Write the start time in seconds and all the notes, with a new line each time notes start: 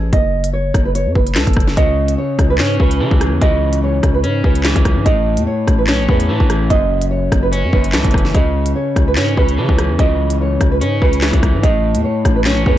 Already playing: A1 G#4
0.13 F#1 D#5, kick, closed hi-hat
0.44 closed hi-hat
0.53 C#5
0.74 F#1, kick, cross-stick, closed hi-hat
0.85 B4
0.95 C#5, closed hi-hat
1.06 F#2
1.15 F#1 B4, kick
1.27 closed hi-hat
1.35 C#2 A4, snare, clap, closed hi-hat
1.47 F#1, kick, closed hi-hat
1.53 kick, cross-stick, closed hi-hat
1.60 closed hi-hat
1.67 snare
1.77 C#2 C#3 D#5, kick, closed hi-hat
2.08 closed hi-hat
2.18 C#5
2.39 C#2, kick, cross-stick, closed hi-hat
2.50 B4
2.58 G#2 C#4 C#5, snare, clap, closed hi-hat
2.80 C#2 C#3 B4, kick
2.91 closed hi-hat
3.00 C#3 E3 A4
3.11 C#2, kick
3.20 G#4, cross-stick, closed hi-hat
3.32 E2
3.41 C#2 C#3 D#5, kick, closed hi-hat
3.73 closed hi-hat
3.84 C#5
4.03 C#2, kick, cross-stick, closed hi-hat
4.14 B4
4.24 G#2 C#4 C#5, closed hi-hat
4.44 C#2 C#3 B4, kick
4.55 closed hi-hat
4.64 E3 G#4, snare, clap, closed hi-hat
4.76 C#2, kick, closed hi-hat
4.85 kick, cross-stick, closed hi-hat
4.96 G#2
5.06 A1 A2 D#5, kick, closed hi-hat
5.37 E2, closed hi-hat
5.47 C#5
5.67 A1, kick, cross-stick, closed hi-hat
5.79 B4
5.87 B1 C#4 C#5, snare, clap, closed hi-hat
5.99 A1
6.09 E2 A2 B4, kick
6.20 closed hi-hat
6.29 A2 E3 A4
6.40 A1, kick
6.49 G#4, cross-stick, closed hi-hat
6.70 F#1 F#2 D#5, kick, closed hi-hat
7.01 closed hi-hat
7.11 C#5
7.32 F#1, kick, cross-stick, closed hi-hat
7.43 B4
7.52 C#4 C#5, closed hi-hat
7.63 F#2
7.73 F#1 F#2 B4, kick
7.84 closed hi-hat
7.93 C#2 E3 A4, snare, clap, closed hi-hat
8.04 F#1, kick, closed hi-hat
8.11 kick, cross-stick, closed hi-hat
8.18 closed hi-hat
8.25 snare
8.35 C#2 C#3 D#5, kick, closed hi-hat
8.66 closed hi-hat
8.76 C#5
8.96 C#2, kick, cross-stick, closed hi-hat
9.08 B4
9.16 G#2 C#4 C#5, snare, clap, closed hi-hat
9.37 C#2 C#3 B4, kick
9.48 closed hi-hat
9.58 C#3 E3 A4
9.69 C#2, kick
9.78 G#4, cross-stick, closed hi-hat
9.89 E2
9.99 C#2 C#3 D#5, kick, closed hi-hat
10.30 closed hi-hat
10.41 C#5
10.61 C#2, kick, cross-stick, closed hi-hat
10.72 B4
10.81 G#2 C#4 C#5, closed hi-hat
11.02 C#2 C#3 B4, kick
11.13 closed hi-hat
11.21 E3 G#4, snare, clap, closed hi-hat
11.33 C#2, kick, closed hi-hat
11.43 kick, cross-stick, closed hi-hat
11.54 G#2
11.63 A1 A2 D#5, kick, closed hi-hat
11.95 E2, closed hi-hat
12.04 C#5
12.25 A1, kick, cross-stick, closed hi-hat
12.36 B4
12.45 B1 C#4 C#5, snare, clap, closed hi-hat
12.57 A1
12.66 E2 A2 B4, kick